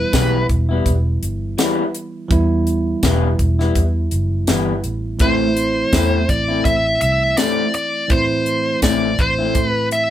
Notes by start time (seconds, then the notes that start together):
Already playing: E3 G3 B3 E4 B4
0.13 B1 E3 G3 B3 E4, kick, snare, closed hi-hat, tambourine
0.49 E1, kick, closed hi-hat
0.69 G3 B3 E4
0.86 E1, kick, closed hi-hat
1.23 G1, closed hi-hat
1.58 E3 G3 B3 E4, snare, closed hi-hat, tambourine
1.95 closed hi-hat
2.28 E2 E3 G3 B3 E4, kick, closed hi-hat
2.67 closed hi-hat
3.03 E1 E3 G3 B3 E4, kick, snare, closed hi-hat, tambourine
3.39 E1, kick, closed hi-hat
3.59 G3 B3 E4, snare
3.75 E2, kick, closed hi-hat
4.11 F#1, closed hi-hat
4.47 G1 E3 G3 B3 E4, snare, closed hi-hat, tambourine
4.84 A1, closed hi-hat
5.19 A1 A2 E3 A3 C4 E4 C5, kick, closed hi-hat
5.57 closed hi-hat
5.93 E2 A2 A3 C4 E4, kick, snare, closed hi-hat, tambourine
6.29 A1 D5, kick, closed hi-hat
6.48 A3 C4 E4
6.65 A1 E5, kick, closed hi-hat
7.01 C2 E5, closed hi-hat
7.37 A2 A3 C4 E4 D5, snare, closed hi-hat, tambourine
7.74 D5, closed hi-hat
8.08 A2 E3 A3 C4 E4 C5, kick, closed hi-hat
8.46 closed hi-hat
8.82 A1 A2 A3 C4 E4 D5, kick, snare, closed hi-hat, tambourine
9.19 A1 C5, kick, closed hi-hat
9.39 A3 C4 E4
9.55 A2, kick, closed hi-hat
9.68 B4
9.91 E5, closed hi-hat